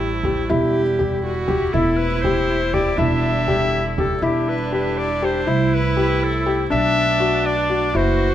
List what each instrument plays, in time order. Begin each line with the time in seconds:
Already playing: upright bass A1, woodwind section C3 G3 A3, viola E4
0.23 felt piano G4, frame drum
0.50 upright bass E1, woodwind section D3 G3 E4, felt piano E4, viola G4, frame drum
0.99 felt piano G4, frame drum
1.25 viola F#4
1.48 felt piano G4, clarinet G4, frame drum
1.73 upright bass E1, woodwind section C3 A3, viola E4, felt piano E4, clarinet A4, frame drum
1.97 clarinet B4
2.22 felt piano G4, clarinet C5, frame drum
2.73 felt piano G4, clarinet D5, frame drum
2.96 upright bass E1, woodwind section D3 G3 E4, viola D4, felt piano E4, clarinet E5, frame drum
3.48 felt piano G4, frame drum
3.98 felt piano G4, clarinet A4, frame drum
4.22 upright bass E1, woodwind section D3 G3 E4, viola D4, felt piano E4, clarinet G4
4.49 clarinet B4
4.72 felt piano G4, clarinet B4
4.98 clarinet D5
5.22 felt piano G4, clarinet C5
5.46 upright bass C2, woodwind section C3 A3 E4, felt piano E4, viola E4
5.74 clarinet B4
5.97 felt piano G4
6.23 clarinet A4
6.46 felt piano G4
6.70 upright bass B1, woodwind section B2 D4, felt piano D4, viola D4, clarinet E5
7.20 felt piano F#4
7.46 clarinet D5
7.70 felt piano F#4
7.94 upright bass F#1, woodwind section E3 F#4, felt piano E4, viola F#4, clarinet C5